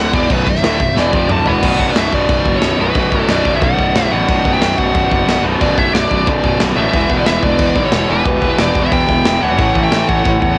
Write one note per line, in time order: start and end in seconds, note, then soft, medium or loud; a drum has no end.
0.00 0.12 D1 loud
0.00 0.12 D2 medium
0.00 0.13 A2 loud
0.00 0.13 D3 loud
0.00 0.14 F#5 medium
0.05 snare soft
0.12 0.29 E1 medium
0.12 0.29 E2 medium
0.12 0.29 B2 loud
0.12 0.30 E3 medium
0.12 0.30 D5 medium
0.12 kick loud
0.12 crash medium
0.29 0.46 B0 medium
0.29 0.45 B1 medium
0.29 0.45 F#2 medium
0.29 0.46 B2 loud
0.29 0.48 B4 medium
0.29 kick loud
0.29 crash medium
0.46 0.62 B0 medium
0.46 0.59 B1 medium
0.46 0.60 F#2 medium
0.46 0.94 E5 loud
0.46 kick medium
0.46 crash medium
0.55 snare soft
0.62 0.79 D1 loud
0.62 0.79 D2 medium
0.62 0.79 A2 medium
0.62 0.79 D3 loud
0.62 snare loud
0.62 crash medium
0.79 0.96 B0 medium
0.79 0.93 B1 medium
0.79 0.93 F#2 medium
0.79 kick medium
0.79 crash medium
0.95 1.12 E1 loud
0.95 1.12 E2 medium
0.95 1.12 B2 medium
0.95 1.13 E3 loud
0.95 snare medium
1.00 1.29 D5 medium
1.12 1.29 F1 medium
1.12 1.28 F2 medium
1.12 1.29 C3 medium
1.12 1.29 F3 loud
1.12 kick loud
1.28 1.45 D1 medium
1.28 1.45 D2 medium
1.28 1.46 A2 medium
1.28 1.46 D3 loud
1.28 1.48 A5 medium
1.28 mid tom loud
1.45 1.62 E1 medium
1.45 1.61 E2 medium
1.45 1.62 B2 medium
1.45 1.62 E3 loud
1.45 1.86 D5 medium
1.45 1.90 F#5 loud
1.45 1.78 B5 medium
1.45 floor tom medium
1.61 1.74 B0 medium
1.61 2.81 B1 medium
1.61 2.78 F#2 medium
1.61 2.77 B2 loud
1.61 kick loud
1.61 crash loud
1.61 crash medium
1.80 1.91 B0 medium
1.80 kick medium
1.90 1.97 B4 medium
1.90 1.98 D5 medium
1.96 2.07 B0 medium
1.96 2.12 B4 medium
1.96 2.14 E5 loud
1.96 snare loud
1.96 crash medium
2.13 2.23 B0 medium
2.13 2.55 B4 medium
2.13 2.56 D5 loud
2.13 kick medium
2.29 2.40 B0 loud
2.29 kick loud
2.29 crash medium
2.45 2.56 F#1 medium
2.45 kick medium
2.56 2.79 A4 medium
2.56 2.81 C#5 medium
2.62 2.74 B0 medium
2.62 snare loud
2.62 crash medium
2.78 2.90 B0 medium
2.78 2.93 B1 medium
2.78 2.94 F#2 medium
2.78 2.97 B2 medium
2.78 3.26 F#4 medium
2.78 3.29 B4 loud
2.94 3.06 B0 medium
2.94 4.14 B1 medium
2.94 4.11 F#2 loud
2.94 4.10 B2 loud
2.94 kick loud
2.94 crash medium
3.12 3.23 B0 medium
3.12 kick medium
3.28 3.40 B0 loud
3.28 3.53 B4 medium
3.28 3.55 D5 loud
3.28 snare loud
3.28 crash medium
3.45 3.56 B0 loud
3.45 kick medium
3.54 3.58 C#5 medium
3.54 3.58 E5 loud
3.62 3.73 B1 medium
3.62 4.09 D5 medium
3.62 4.12 F#5 loud
3.62 kick loud
3.62 crash medium
3.78 3.89 B0 loud
3.78 kick medium
3.95 4.06 B0 medium
3.95 snare loud
3.95 crash medium
4.11 4.23 A1 medium
4.11 4.25 B1 medium
4.11 4.27 F#2 medium
4.11 4.29 B2 medium
4.11 4.51 D5 loud
4.11 4.51 F#5 loud
4.26 4.39 B0 loud
4.26 5.42 B1 medium
4.26 5.43 F#2 medium
4.26 5.42 B2 loud
4.26 kick loud
4.26 crash medium
4.45 4.56 B0 loud
4.45 kick medium
4.53 4.77 E5 medium
4.53 4.78 G5 loud
4.61 4.73 B0 loud
4.61 snare loud
4.61 crash medium
4.78 4.89 B0 medium
4.78 5.10 D5 loud
4.78 5.09 F#5 loud
4.78 kick medium
4.95 5.06 B0 medium
4.95 kick loud
4.95 crash medium
5.11 5.22 F#1 medium
5.11 5.42 D5 medium
5.11 5.42 F#5 loud
5.11 kick medium
5.26 5.37 B0 medium
5.26 snare loud
5.26 crash medium
5.43 5.54 B0 medium
5.43 5.60 F#2 medium
5.43 5.59 B2 medium
5.47 5.58 B1 medium
5.59 5.72 B0 medium
5.59 6.75 B1 loud
5.59 6.76 F#2 loud
5.59 6.74 B2 loud
5.59 5.78 B4 medium
5.59 5.78 D5 loud
5.59 kick loud
5.59 crash medium
5.78 5.89 B0 medium
5.78 5.94 C#5 medium
5.78 5.93 E5 loud
5.78 kick medium
5.93 6.05 B0 medium
5.93 6.26 B4 medium
5.93 6.27 D5 loud
5.93 snare loud
5.93 crash medium
6.11 6.22 B0 medium
6.11 kick medium
6.27 6.38 B1 medium
6.27 6.58 B4 medium
6.27 6.59 D5 medium
6.27 kick loud
6.27 crash medium
6.44 6.54 B0 medium
6.44 kick loud
6.60 6.71 B0 medium
6.60 snare loud
6.60 crash medium
6.75 6.87 A1 medium
6.75 6.91 B1 medium
6.75 6.93 F#2 medium
6.75 6.91 B2 medium
6.75 7.16 B4 medium
6.75 7.17 E5 medium
6.91 7.04 E1 medium
6.91 8.07 E2 medium
6.91 8.09 B2 medium
6.91 kick loud
6.91 crash medium
6.96 8.07 E3 loud
7.10 7.21 E1 medium
7.10 kick medium
7.18 7.26 B4 medium
7.18 7.26 D5 medium
7.26 7.37 E1 medium
7.26 7.42 B4 medium
7.26 7.43 E5 loud
7.26 snare loud
7.26 crash medium
7.43 7.54 E1 medium
7.43 7.85 B4 medium
7.43 7.85 D5 loud
7.43 kick medium
7.59 7.70 E1 medium
7.59 kick loud
7.59 crash medium
7.76 7.87 B1 medium
7.76 kick medium
7.85 8.08 A4 medium
7.85 8.11 C#5 medium
7.92 8.04 E1 medium
7.92 snare loud
7.92 crash medium
8.07 8.20 E1 medium
8.07 8.25 B2 medium
8.07 8.27 E3 medium
8.07 8.55 G4 medium
8.07 8.61 B4 medium
8.12 8.22 E2 medium
8.24 8.37 E1 medium
8.24 9.40 E2 medium
8.24 9.41 B2 medium
8.24 kick loud
8.24 crash medium
8.28 9.41 E3 loud
8.42 8.53 E1 medium
8.42 kick medium
8.58 8.70 E1 loud
8.58 8.82 B4 medium
8.58 8.82 D5 medium
8.58 snare loud
8.58 crash medium
8.75 8.87 E1 loud
8.75 kick medium
8.83 8.92 C#5 medium
8.83 8.92 E5 medium
8.92 9.03 E2 loud
8.92 9.38 E5 medium
8.92 9.42 G5 loud
8.92 kick loud
8.92 crash medium
9.09 9.20 E1 loud
9.09 kick medium
9.25 9.37 E1 medium
9.25 snare loud
9.25 crash medium
9.41 9.59 D1 medium
9.41 9.58 B2 medium
9.41 9.60 E3 medium
9.41 9.80 C#5 medium
9.41 9.84 F#5 loud
9.45 9.57 E2 medium
9.58 9.70 A1 medium
9.58 10.58 A2 medium
9.58 10.58 E3 medium
9.58 10.58 A3 loud
9.58 kick loud
9.58 crash medium
9.75 9.86 A1 loud
9.75 kick medium
9.84 10.07 E5 medium
9.84 10.08 G5 loud
9.91 10.02 A1 loud
9.91 snare loud
9.91 crash medium
10.08 10.19 A1 medium
10.08 10.40 C#5 medium
10.08 10.41 F#5 loud
10.08 kick medium
10.25 10.36 A1 medium
10.25 kick loud
10.25 crash medium
10.42 10.52 E2 medium
10.42 10.58 C#5 medium
10.42 10.58 F#5 loud
10.42 kick medium